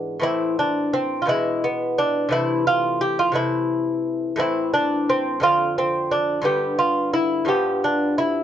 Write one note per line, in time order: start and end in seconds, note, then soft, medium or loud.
0.00 0.18 G#2 soft
0.00 0.19 E3 soft
0.00 0.19 B3 soft
0.00 0.19 D4 medium
0.20 1.24 A2 soft
0.20 1.25 E3 soft
0.20 0.92 C4 soft
0.20 0.57 E4 medium
0.59 0.93 D4 medium
0.94 1.21 C4 medium
1.22 2.28 B2 soft
1.22 1.29 F4 soft
1.27 2.29 E3 soft
1.27 2.29 G#3 soft
1.27 1.63 E4 medium
1.64 1.97 B3 medium
1.98 2.31 D4 medium
2.29 3.31 C3 soft
2.29 3.32 E3 soft
2.29 3.33 A3 soft
2.29 2.66 E4 medium
2.67 3.01 F4 medium
3.01 3.19 G4 medium
3.19 3.35 F4 medium
3.32 4.35 C3 soft
3.32 4.36 E3 soft
3.32 4.36 A3 soft
3.32 4.36 E4 medium
4.36 5.39 A2 medium
4.36 5.40 E3 soft
4.36 5.08 C4 soft
4.36 4.73 E4 medium
4.74 5.08 D4 medium
5.10 5.41 C4 medium
5.40 6.41 F2 medium
5.40 6.42 D3 soft
5.40 5.77 C4 soft
5.40 5.77 F4 medium
5.78 6.11 C4 medium
6.11 6.44 D4 medium
6.42 7.44 G2 medium
6.42 7.45 D3 soft
6.42 7.46 B3 soft
6.42 6.78 G4 medium
6.79 7.13 F4 medium
7.14 7.48 E4 medium
7.45 8.44 G2 medium
7.45 8.44 F3 soft
7.45 8.44 B3 soft
7.45 7.83 G4 medium
7.84 8.18 D4 medium
8.18 8.44 E4 medium